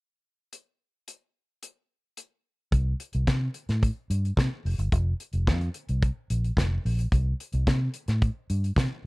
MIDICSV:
0, 0, Header, 1, 3, 480
1, 0, Start_track
1, 0, Tempo, 549954
1, 455, Time_signature, 4, 2, 24, 8
1, 7908, End_track
2, 0, Start_track
2, 0, Title_t, "Fingered electric bass"
2, 0, Program_c, 0, 33
2, 2380, Note_on_c, 0, 36, 101
2, 2555, Note_off_c, 0, 36, 0
2, 2746, Note_on_c, 0, 36, 77
2, 2831, Note_off_c, 0, 36, 0
2, 2861, Note_on_c, 0, 48, 81
2, 3036, Note_off_c, 0, 48, 0
2, 3220, Note_on_c, 0, 45, 75
2, 3395, Note_off_c, 0, 45, 0
2, 3578, Note_on_c, 0, 43, 73
2, 3754, Note_off_c, 0, 43, 0
2, 3821, Note_on_c, 0, 48, 93
2, 3908, Note_off_c, 0, 48, 0
2, 4061, Note_on_c, 0, 29, 89
2, 4147, Note_off_c, 0, 29, 0
2, 4176, Note_on_c, 0, 31, 81
2, 4264, Note_off_c, 0, 31, 0
2, 4299, Note_on_c, 0, 29, 106
2, 4474, Note_off_c, 0, 29, 0
2, 4656, Note_on_c, 0, 29, 80
2, 4782, Note_on_c, 0, 41, 100
2, 4795, Note_off_c, 0, 29, 0
2, 4956, Note_off_c, 0, 41, 0
2, 5143, Note_on_c, 0, 36, 79
2, 5316, Note_off_c, 0, 36, 0
2, 5501, Note_on_c, 0, 34, 76
2, 5675, Note_off_c, 0, 34, 0
2, 5736, Note_on_c, 0, 29, 91
2, 5912, Note_off_c, 0, 29, 0
2, 5982, Note_on_c, 0, 34, 86
2, 6155, Note_off_c, 0, 34, 0
2, 6218, Note_on_c, 0, 36, 104
2, 6392, Note_off_c, 0, 36, 0
2, 6577, Note_on_c, 0, 36, 94
2, 6664, Note_off_c, 0, 36, 0
2, 6699, Note_on_c, 0, 48, 93
2, 6873, Note_off_c, 0, 48, 0
2, 7054, Note_on_c, 0, 45, 82
2, 7230, Note_off_c, 0, 45, 0
2, 7418, Note_on_c, 0, 43, 77
2, 7592, Note_off_c, 0, 43, 0
2, 7654, Note_on_c, 0, 48, 92
2, 7742, Note_off_c, 0, 48, 0
2, 7908, End_track
3, 0, Start_track
3, 0, Title_t, "Drums"
3, 460, Note_on_c, 9, 42, 48
3, 547, Note_off_c, 9, 42, 0
3, 941, Note_on_c, 9, 42, 54
3, 1028, Note_off_c, 9, 42, 0
3, 1420, Note_on_c, 9, 42, 54
3, 1507, Note_off_c, 9, 42, 0
3, 1896, Note_on_c, 9, 42, 51
3, 1984, Note_off_c, 9, 42, 0
3, 2376, Note_on_c, 9, 36, 102
3, 2377, Note_on_c, 9, 42, 73
3, 2463, Note_off_c, 9, 36, 0
3, 2465, Note_off_c, 9, 42, 0
3, 2618, Note_on_c, 9, 42, 59
3, 2705, Note_off_c, 9, 42, 0
3, 2731, Note_on_c, 9, 42, 37
3, 2818, Note_off_c, 9, 42, 0
3, 2857, Note_on_c, 9, 36, 90
3, 2857, Note_on_c, 9, 42, 79
3, 2863, Note_on_c, 9, 38, 100
3, 2944, Note_off_c, 9, 36, 0
3, 2944, Note_off_c, 9, 42, 0
3, 2950, Note_off_c, 9, 38, 0
3, 3092, Note_on_c, 9, 42, 62
3, 3179, Note_off_c, 9, 42, 0
3, 3219, Note_on_c, 9, 42, 34
3, 3223, Note_on_c, 9, 38, 32
3, 3306, Note_off_c, 9, 42, 0
3, 3311, Note_off_c, 9, 38, 0
3, 3340, Note_on_c, 9, 42, 72
3, 3341, Note_on_c, 9, 36, 99
3, 3428, Note_off_c, 9, 36, 0
3, 3428, Note_off_c, 9, 42, 0
3, 3583, Note_on_c, 9, 42, 66
3, 3671, Note_off_c, 9, 42, 0
3, 3710, Note_on_c, 9, 42, 38
3, 3797, Note_off_c, 9, 42, 0
3, 3816, Note_on_c, 9, 36, 98
3, 3828, Note_on_c, 9, 38, 90
3, 3830, Note_on_c, 9, 42, 73
3, 3903, Note_off_c, 9, 36, 0
3, 3916, Note_off_c, 9, 38, 0
3, 3917, Note_off_c, 9, 42, 0
3, 4069, Note_on_c, 9, 46, 73
3, 4156, Note_off_c, 9, 46, 0
3, 4181, Note_on_c, 9, 42, 47
3, 4268, Note_off_c, 9, 42, 0
3, 4297, Note_on_c, 9, 36, 99
3, 4300, Note_on_c, 9, 42, 71
3, 4384, Note_off_c, 9, 36, 0
3, 4387, Note_off_c, 9, 42, 0
3, 4539, Note_on_c, 9, 42, 54
3, 4627, Note_off_c, 9, 42, 0
3, 4650, Note_on_c, 9, 42, 36
3, 4737, Note_off_c, 9, 42, 0
3, 4777, Note_on_c, 9, 36, 106
3, 4778, Note_on_c, 9, 42, 68
3, 4784, Note_on_c, 9, 38, 104
3, 4865, Note_off_c, 9, 36, 0
3, 4865, Note_off_c, 9, 42, 0
3, 4871, Note_off_c, 9, 38, 0
3, 4897, Note_on_c, 9, 42, 31
3, 4984, Note_off_c, 9, 42, 0
3, 5012, Note_on_c, 9, 42, 65
3, 5100, Note_off_c, 9, 42, 0
3, 5137, Note_on_c, 9, 42, 39
3, 5225, Note_off_c, 9, 42, 0
3, 5258, Note_on_c, 9, 42, 72
3, 5259, Note_on_c, 9, 36, 117
3, 5345, Note_off_c, 9, 42, 0
3, 5346, Note_off_c, 9, 36, 0
3, 5500, Note_on_c, 9, 42, 64
3, 5587, Note_off_c, 9, 42, 0
3, 5624, Note_on_c, 9, 42, 37
3, 5712, Note_off_c, 9, 42, 0
3, 5733, Note_on_c, 9, 36, 93
3, 5745, Note_on_c, 9, 38, 99
3, 5747, Note_on_c, 9, 42, 79
3, 5821, Note_off_c, 9, 36, 0
3, 5832, Note_off_c, 9, 38, 0
3, 5834, Note_off_c, 9, 42, 0
3, 5987, Note_on_c, 9, 46, 70
3, 6074, Note_off_c, 9, 46, 0
3, 6099, Note_on_c, 9, 42, 43
3, 6187, Note_off_c, 9, 42, 0
3, 6215, Note_on_c, 9, 36, 96
3, 6218, Note_on_c, 9, 42, 59
3, 6302, Note_off_c, 9, 36, 0
3, 6305, Note_off_c, 9, 42, 0
3, 6461, Note_on_c, 9, 42, 59
3, 6548, Note_off_c, 9, 42, 0
3, 6568, Note_on_c, 9, 42, 35
3, 6655, Note_off_c, 9, 42, 0
3, 6694, Note_on_c, 9, 36, 95
3, 6696, Note_on_c, 9, 42, 73
3, 6702, Note_on_c, 9, 38, 101
3, 6782, Note_off_c, 9, 36, 0
3, 6783, Note_off_c, 9, 42, 0
3, 6789, Note_off_c, 9, 38, 0
3, 6927, Note_on_c, 9, 42, 63
3, 7015, Note_off_c, 9, 42, 0
3, 7050, Note_on_c, 9, 42, 40
3, 7055, Note_on_c, 9, 38, 31
3, 7137, Note_off_c, 9, 42, 0
3, 7142, Note_off_c, 9, 38, 0
3, 7173, Note_on_c, 9, 42, 66
3, 7175, Note_on_c, 9, 36, 111
3, 7260, Note_off_c, 9, 42, 0
3, 7262, Note_off_c, 9, 36, 0
3, 7417, Note_on_c, 9, 42, 61
3, 7504, Note_off_c, 9, 42, 0
3, 7541, Note_on_c, 9, 42, 42
3, 7629, Note_off_c, 9, 42, 0
3, 7649, Note_on_c, 9, 36, 101
3, 7661, Note_on_c, 9, 38, 112
3, 7663, Note_on_c, 9, 42, 80
3, 7737, Note_off_c, 9, 36, 0
3, 7748, Note_off_c, 9, 38, 0
3, 7750, Note_off_c, 9, 42, 0
3, 7908, End_track
0, 0, End_of_file